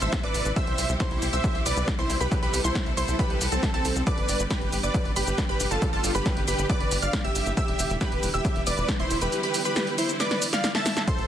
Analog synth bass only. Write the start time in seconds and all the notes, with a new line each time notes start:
0.02 A1
0.24 A1
0.35 A1
0.45 A1
0.67 C2
0.78 C2
0.89 C2
1.11 C2
1.22 C2
1.33 C2
1.55 C2
1.66 C2
1.77 C2
1.99 C2
2.10 C2
2.20 C2
2.42 C2
2.53 C2
2.64 C2
2.86 C2
2.97 C2
3.08 C2
3.30 C2
3.41 C2
3.52 C2
3.74 C2
3.85 C2
3.96 C2
4.18 G1
4.29 G1
4.40 G1
4.61 G1
4.72 G1
4.83 G1
5.05 G1
5.16 G1
5.27 G1
5.49 G1
5.60 G1
5.71 G1
5.93 G1
6.04 G1
6.15 G1
6.37 G1
6.48 G1
6.59 G1
6.80 G1
6.92 G1
7.02 G1
7.24 G1
7.35 G1
7.46 G1
7.68 E1
7.79 E1
7.90 E1
8.12 E1
8.23 E1
8.34 E1
8.56 E1
8.67 E1
8.78 E1
9.00 E1
9.10 E1
9.22 E1
11.19 A1